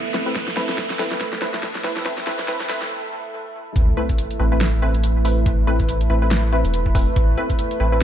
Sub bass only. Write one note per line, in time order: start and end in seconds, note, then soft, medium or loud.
0.00 0.34 A1 medium
0.35 0.55 A1 loud
0.99 2.68 A1 medium
2.69 2.91 A1 medium
3.76 3.96 A1 loud
4.40 6.09 A1 medium
6.10 6.64 A1 medium
6.65 7.06 E1 loud
7.16 7.36 A1 loud
7.80 8.03 A1 medium